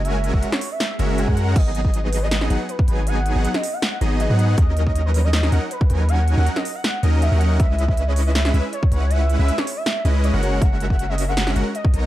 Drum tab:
CC |----------------|x---------------|----------------|----------------|
HH |x-x-x-o-x-x-x-x-|x-x-x-o-x-x-x-x-|x-x-x-o-x-x-x-x-|x-x-x-o-x-x-x-x-|
SD |-----o--o-------|--------oo------|-----o--o-------|--------oo------|
BD |---o---------o--|o--o---------o--|----------------|o--o---------o--|

CC |----------------|----------------|----------------|----------------|
HH |x-x-x-o-x-x-x-x-|x-x-x-o-x-x-x-x-|x-x-x-o-x-x-x-x-|x-x-x-o-x-x-x-x-|
SD |-----o--o-------|--------oo------|-----o--o-------|--------oo------|
BD |----------------|o--o---------o--|----------------|o--o---------o--|